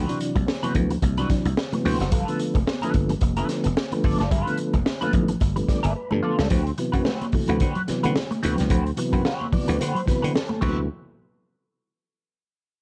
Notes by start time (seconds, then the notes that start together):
Already playing: C4 F#4 B4
0.07 C3 E3 F#3 D4, closed hi-hat, muted conga
0.20 muted clean electric guitar stroke, closed hi-hat
0.35 C2 F#3, muted clean electric guitar stroke, kick, closed hi-hat, high conga
0.47 muted clean electric guitar stroke, snare, muted conga
0.62 C3 E3 F#3 B3 C4 F#4 B4, closed hi-hat, high conga
0.74 D2 F3, kick, closed hi-hat, high conga, low conga
0.89 F3, muted clean electric guitar stroke, closed hi-hat
1.02 C2, muted clean electric guitar stroke, kick, closed hi-hat, muted conga, high conga
1.17 C3 E3 F#3 C4 D4 F#4 B4, closed hi-hat, muted conga
1.30 F#3, muted clean electric guitar stroke, kick, snare, closed hi-hat
1.45 C2, muted clean electric guitar stroke, closed hi-hat, high conga
1.57 muted clean electric guitar stroke, snare, muted conga
1.72 C3 E3 F#3 A3 B3, muted clean electric guitar stroke, closed hi-hat, muted conga, high conga
1.85 D2 C4 F#4 C5, muted clean electric guitar stroke, open hi-hat, low conga
2.00 F#1 F#3 C4 F#4 C5, snare, closed hi-hat
2.12 G1 G3 F4 A4 B4, kick, closed hi-hat, low conga
2.27 D3 F3 A3 B3, closed hi-hat
2.39 muted clean electric guitar stroke, closed hi-hat
2.54 F1 A3, muted clean electric guitar stroke, kick, closed hi-hat, high conga
2.67 B3, muted clean electric guitar stroke, snare
2.81 D3 F3 A3 B3 F4 A4 B4, muted clean electric guitar stroke, closed hi-hat, high conga
2.94 G1, muted clean electric guitar stroke, kick, closed hi-hat, high conga, low conga
3.09 G3, muted clean electric guitar stroke, closed hi-hat
3.21 F1, muted clean electric guitar stroke, kick, closed hi-hat, high conga
3.36 D3 F3 A3 B3 F4 A4 B4, closed hi-hat, muted conga
3.49 muted clean electric guitar stroke, snare, closed hi-hat
3.64 F1 B3, muted clean electric guitar stroke, closed hi-hat, high conga
3.76 muted clean electric guitar stroke, snare, muted conga
3.92 D3 F3 A3 B3, muted clean electric guitar stroke, closed hi-hat, high conga
4.04 G1 F4 A4 D5, muted clean electric guitar stroke, kick, open hi-hat, low conga
4.19 F#1 A3 F4 A4 D5, snare, closed hi-hat
4.31 G1 G3 E4 G#4 B4, kick, closed hi-hat, low conga
4.42 D3 F4 A4
4.46 F3 A3 B3, closed hi-hat
4.57 muted clean electric guitar stroke, closed hi-hat
4.73 F1 A3, muted clean electric guitar stroke, kick, closed hi-hat, high conga
4.85 muted clean electric guitar stroke, snare, muted conga
5.01 D3 F3 A3 B3 F4 A4 B4, closed hi-hat, muted conga, high conga
5.13 A1 F3, kick, closed hi-hat, high conga, low conga
5.28 F3, muted clean electric guitar stroke, closed hi-hat
5.40 G1, muted clean electric guitar stroke, kick, closed hi-hat, high conga
5.56 D3 F3 G3 A3 B3, muted clean electric guitar stroke, closed hi-hat, muted conga
5.68 G3 D5, kick, snare, closed hi-hat
5.83 G1 F4 A4 B4, closed hi-hat, high conga
5.95 B4, muted clean electric guitar stroke
6.11 G2 D3 F3 A3 B3 A4, muted clean electric guitar stroke, muted conga, high conga
6.23 F4 A4 D5, muted clean electric guitar stroke, low conga
6.39 C#2 G3 F4 A4 D5, snare
6.50 D2 F3 C4 F#4 B4, kick, closed hi-hat, low conga
6.66 muted clean electric guitar stroke, closed hi-hat, muted conga
6.78 C3 E3 F#3 B3, muted clean electric guitar stroke, closed hi-hat
6.92 F#2 F#3 C4 F#4 B4, kick, closed hi-hat, high conga
7.04 A3 C4 F#4 B4, snare, muted conga
7.21 muted clean electric guitar stroke, closed hi-hat, muted conga, high conga
7.32 C3 E3 F#3 A3, muted clean electric guitar stroke, muted slap bass stroke, kick, open hi-hat, low conga
7.48 D2 F3 C4 F#4 B4, closed hi-hat
7.60 D3 C4 F#4 B4, kick, closed hi-hat, muted conga, high conga
7.75 F#3, closed hi-hat
7.88 C3 E3 F#3 B3, muted clean electric guitar stroke, muted slap bass stroke, snare, closed hi-hat
8.03 D3 A3 C4 F#4 B4, closed hi-hat, high conga
8.16 snare, muted conga
8.31 A3, muted clean electric guitar stroke, closed hi-hat, high conga
8.43 D2 C3 E3 F#3 B3 C4 F#4 B4, muted clean electric guitar stroke, closed hi-hat, low conga
8.58 C#2 F#3, muted clean electric guitar stroke, snare, closed hi-hat
8.70 D2 F3 C4 F#4 B4, kick, closed hi-hat, muted conga, low conga
8.86 muted clean electric guitar stroke, closed hi-hat, muted conga
8.97 C3 E3 F#3 B3, muted clean electric guitar stroke, closed hi-hat
9.12 F#2 F#3 C4 F#4 B4, kick, closed hi-hat, high conga
9.25 C4 F#4 B4, muted clean electric guitar stroke, snare, muted conga
9.41 high conga
9.52 C3 E3 F3 F#3 B3 D5, muted clean electric guitar stroke, muted slap bass stroke, kick, open hi-hat, low conga
9.67 D2 F3 C4 F#4 B4, closed hi-hat
9.79 D3 C4 F#4 B4 C5, muted clean electric guitar stroke, closed hi-hat, high conga
9.95 F#3, closed hi-hat, muted conga
10.06 C3 E3 F#3 B3 B4, muted clean electric guitar stroke, muted slap bass stroke, kick, snare, closed hi-hat
10.22 D3 C4 F#4 B4, closed hi-hat, high conga
10.34 A4, muted clean electric guitar stroke, snare, muted conga
10.49 A3, muted clean electric guitar stroke, muted conga, high conga
10.61 D2 C3 E3 F#3 B3 C4 F#4 B4, kick, crash, high conga